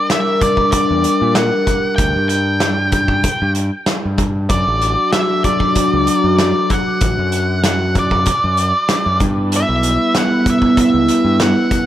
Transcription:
Already playing: G3 D4 G4 A#4
0.10 E5, snare, closed hi-hat
0.41 D5, kick, closed hi-hat
0.57 kick
0.72 D5, kick, closed hi-hat
0.91 E2
1.04 closed hi-hat
1.21 A#2
1.35 F#5, snare, closed hi-hat
1.67 kick, closed hi-hat
1.96 D2 G5, kick, closed hi-hat
2.16 G2
2.29 G5, closed hi-hat
2.60 snare, closed hi-hat
2.92 kick, closed hi-hat
3.08 kick
3.24 kick, closed hi-hat
3.42 G2
3.55 closed hi-hat
3.86 snare, closed hi-hat
4.05 G2
4.18 kick, closed hi-hat
4.50 F#2 F#3 D4 F#4 D5, kick, closed hi-hat
4.54 A4
4.67 A1
4.82 closed hi-hat
5.13 E5, snare, closed hi-hat
5.44 D5, kick, closed hi-hat
5.60 kick
5.76 kick, closed hi-hat
5.93 C#2
6.07 closed hi-hat
6.24 F#2
6.39 D5, snare, closed hi-hat
6.70 F#5, kick, closed hi-hat
7.01 A1, kick, closed hi-hat
7.18 F#2
7.32 closed hi-hat
7.64 F#5, snare, closed hi-hat
7.95 D5, kick, closed hi-hat
8.11 kick
8.26 kick, closed hi-hat
8.44 F#2
8.57 closed hi-hat
8.89 snare, closed hi-hat
9.06 F#2
9.20 G2 G3 B3 E4 B4, kick, closed hi-hat
9.52 closed hi-hat
9.56 E5
9.69 B1
9.83 closed hi-hat
10.15 F#5, snare, closed hi-hat
10.46 kick, closed hi-hat
10.50 E5
10.62 kick
10.77 E5, kick, closed hi-hat
10.94 C#2
11.08 closed hi-hat
11.25 G2
11.40 F#5, snare, closed hi-hat
11.71 kick, closed hi-hat

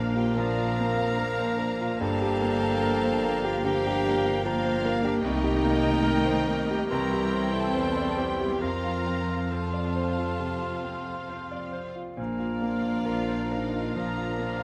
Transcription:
Already playing: A#1 A#2 F3 A#3 D4 F4 A#4 C5 D5 F5 A#5
0.15 F4 G4 G5
0.35 F3 A#3 D4 A#4 F5 A#5
0.58 F4
0.78 A#3 C4
0.98 F5
1.19 A#3 A#4
1.39 C5
1.59 A#4
1.81 F4
2.00 G1 G2 F3 A#3 D4 A4 F5 G5 A5 A#5
2.22 G4
2.42 A#3
2.61 F5
2.83 A#4
3.03 C5
3.24 A#4
3.44 F4 G4 F5
3.64 D3 F3 A#3 D4 G4 F5 G5 A#5
3.87 G4
4.08 A#3
4.26 F5
4.44 F3 A#3 D4 F4 A#4 F5 G5 A#5
4.65 C5
4.85 A#4
5.03 D4 G4 D5
5.21 C2 D#3 A3 A#3 D#4 D#5 G5 A#5
5.44 G4
5.64 A#3
5.83 D#5
6.04 A#4
6.25 C5
6.47 A#4
6.71 G4
6.90 C2 E3 G3 C4 E4 A#4 G5 A#5 C6
7.13 G4
7.33 C4
7.53 A4 E5 A5
7.74 E2 C5
7.97 D5
8.18 G4 C5 G5
8.41 G4
8.61 F2 F3 C4 F4 A#4 F5 A#5 C6
8.84 F4
9.07 C4
9.29 F5
9.51 F3 C4 F4 A4 C5 F5 A5 C6
9.74 D5
9.96 C5
10.18 F4
10.39 C3
10.62 F4
10.84 C4
11.07 F5
11.29 C5
11.51 D5
11.73 C5
11.96 F4
12.17 A#1 A#2 F3 A#3 D4 D5 F5 A#5
12.39 F4
12.62 A#3 F4 F5
12.83 F5
13.05 A#1 F4 A#4
13.28 C5
13.51 A#3 D#4 F4 A#4 F5
13.74 F4
13.95 A#1 F3 D4 A#4 F5 A#5
14.18 F4
14.38 A#3 F4 F5
14.58 F5

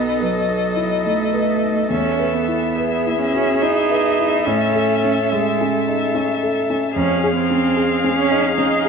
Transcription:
Already playing: B1 B3 D#4 A4 B4 D#5
0.20 F#3 B4
0.48 D#4
0.76 E4
1.04 A3 D#4
1.33 B4
1.62 D#4
1.90 E2 C#4 E5
2.19 B4
2.34 B3
2.48 E4
2.75 G#4 B4
3.07 E4
3.19 C#4
3.35 F#4
3.62 D#4 E4
3.91 B4
4.20 E4
4.46 A2 C#4 A4
4.75 A4
5.04 C#4
5.31 G#3 A4
5.61 C#4
5.88 D#4
6.15 C#4
6.43 A4
6.70 C#4
6.96 F2 C#4 G#4 F5
7.24 G#4
7.36 C4
7.50 C#4
7.77 G#4
8.04 C#4
8.18 C#4
8.31 D#4
8.58 C#4 D#4
8.85 G#4

